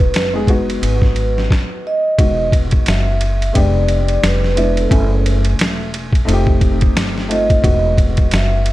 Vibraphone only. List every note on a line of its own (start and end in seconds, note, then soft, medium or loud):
0.00 1.46 B4 medium
1.87 2.50 D#5 loud
2.88 3.58 E5 loud
3.57 4.20 D5 loud
4.26 4.80 B4 medium
4.80 5.43 A4 medium
7.32 7.95 D#5 loud
8.36 8.73 E5 loud